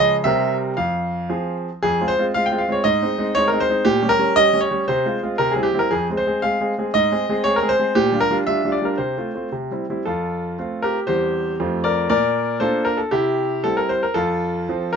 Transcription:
Already playing: C#3 F3 G#3 G#4
0.00 D#5
0.24 C3 G3 C4 A#4 E5
0.77 F2 F5
1.29 F3 C4 G#4
1.83 F2 G#4
2.00 G#3 C4 F4
2.08 C5
2.19 G#3 C4 F4
2.34 G#3 C4 F4 F5
2.46 G5
2.51 G#3 C4 F4
2.58 F5
2.68 G#3 C4 F4 C#5
2.84 G#2 D#5
3.02 G#3 C4 D#4
3.18 G#3 C4 D#4
3.35 G#3 C4 D#4 C#5
3.48 A#4
3.52 G#3 C4 D#4
3.60 C5
3.69 G#3 C4 D#4
3.85 A#2 G4
4.02 G3 C#4
4.09 A#4
4.19 G3 C#4
4.36 G3 C#4 D#5
4.53 G3 C#4
4.61 C#5
4.71 G3 C#4
4.88 C3 C5
5.06 G#3 C4 F4
5.23 G#3 C4 F4
5.38 C3 A#4
5.51 G#4
5.56 G3 C4 E4
5.63 G4
5.73 G3 C4 E4
5.79 A#4
5.91 F2 G#4
6.10 G#3 C4 G#4
6.17 C5
6.27 G#3 C4 G#4
6.42 G#3 C4 G#4 F5
6.61 G#3 C4 G#4
6.78 G#3 C4 G#4
6.94 G#2 D#5
7.12 G#3 C4 G#4
7.29 G#3 C4 G#4
7.44 G#3 C4 G#4 C#5
7.56 A#4
7.62 G#3 C4 G#4
7.69 C5
7.79 G#3 C4 G#4
7.95 A#2 G4
8.12 G3 D4 F4
8.20 A#4
8.30 G3 D4 F4
8.47 G3 D4 F4 E5
8.65 G3 D4 F4
8.72 D5
8.82 G3 D4 F4 A#4
8.98 C3 C5
9.17 A3 C4 F4
9.34 A3 C4 F4
9.52 C3
9.71 G3 C4 E4
9.89 G3 C4 E4
10.05 F2 F4 A4
10.59 A3 C4 F4
10.82 G4 A#4
11.07 E2 G3 C4 G4 C5
11.60 F2 A3 C4 F4
11.84 A#4 D5
12.10 A#2 A#4 D5
12.60 A#3 D4 F4 A4 C5
12.85 A#4
12.97 A4
13.11 C3 E4 G4
13.64 G3 C4 E4 A4
13.77 A#4
13.89 C5
14.03 A#4
14.14 F2 F4 A4
14.69 F3 C4
14.93 A#4

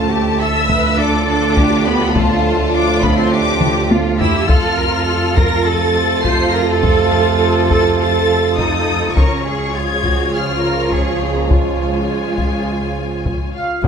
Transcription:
Already playing: D2 A2 F3 A3 D4 F4 A4 A5
0.11 G4
0.39 A4 E5 E6
0.69 B4, taiko
0.98 D4 A4 D6
1.28 D4 D6
1.56 G4, taiko
1.86 B3 B5
2.15 A3 F4 A5, taiko
2.73 D4 F4 D6
3.02 B3 B5, taiko
3.17 C4 C6
3.32 D4 G4 D6
3.62 taiko mid
3.91 F4, taiko high
4.20 E4 G4 E6, taiko low
4.48 F2 C3 F3 A3 F4 A4 F6, taiko
4.79 A#4
5.07 A4
5.36 F4 A#4 A#6, taiko
5.65 A4 A6
6.24 F4 C5 C7, taiko
6.53 A#4 A#6
6.67 A4 A6
6.83 A4, taiko
7.12 F4
7.41 A4
7.70 A4 A6, taiko
7.99 F4 A4 A6
8.57 D#4 A4 D#6, taiko
9.16 C#2 C#3 F3 G#3 C#4 F4 A#4 C#5 C#6, taiko
9.46 G#4
9.75 F4 G#4 G#6
10.05 F#4, taiko
10.33 F4 G#4 F6
10.63 A#4
10.91 C#4 G#4 C#6, taiko
11.20 C4 C6
11.35 A#3 A#5
11.50 G#3 F4 G#5, taiko
12.38 taiko
13.26 taiko
13.55 F4 F5
13.83 F#1 F#2 F#3 F#4 A4 C#5 F#5, taiko

